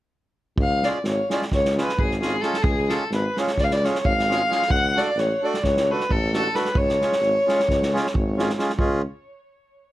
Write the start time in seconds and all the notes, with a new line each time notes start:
0.57 C#2 F5, kick
0.83 G#3 C#4 F4 G#4 D5, snare
1.04 G#1 C#5, snare
1.29 G#3 C#4 F4 G#4 D5, snare
1.42 snare
1.51 C#2 C#5, kick, snare
1.65 snare
1.76 G#3 C#4 F4 G#4, snare
1.80 B4
1.89 snare
1.99 G#1 G#4, kick
2.11 snare
2.20 G#3 C#4 F4 G#4, snare
2.41 G#3 C#4 F4 G#4 A4, snare
2.54 snare
2.62 C#2 G#4, kick
2.87 G#3 C#4 F4 G#4 A4, snare
3.10 G#1 B4, snare
3.36 G#3 C#4 F4 G#4 C#5, snare
3.47 snare
3.57 C#2 D5, kick, snare
3.64 F5
3.71 D5, snare
3.83 G#3 C#4 F4 G#4 C#5, snare
3.95 snare
4.04 G#1 F5, kick
4.19 snare
4.27 G#3 C#4 F4 G#4, snare
4.48 G#3 C#4 F4 G#4, snare
4.62 snare
4.68 C#2 F#5, kick
4.95 A3 D4 F#4 A4 D5, snare
5.16 A1 C#5, snare
5.42 A3 D4 F#4 A4 D5
5.54 snare
5.63 C#2 C#5, kick, snare
5.77 snare
5.89 A3 D4 F#4 A4 B4
6.00 snare
6.09 A1 A4, kick
6.32 A3 D4 F#4 A4, snare
6.54 A3 D4 F#4 A4 B4, snare
6.65 snare
6.75 C#2 C#5, kick
6.89 snare
7.00 G#3 C#4 F4 G#4, snare
7.12 snare
7.21 G#1, snare
7.46 G#3 C#4 F4 G#4, snare
7.59 snare
7.69 C#2, kick, snare
7.83 snare
7.91 G#3 C#4 F4 G#4
7.96 snare
8.06 snare
8.14 G#1, kick
8.37 G#3 C#4 F4 G#4, snare
8.49 snare
8.57 G#3 C#4 F4 G#4, snare
8.69 snare
8.78 C#2 G#3 C#4 F4 G#4, kick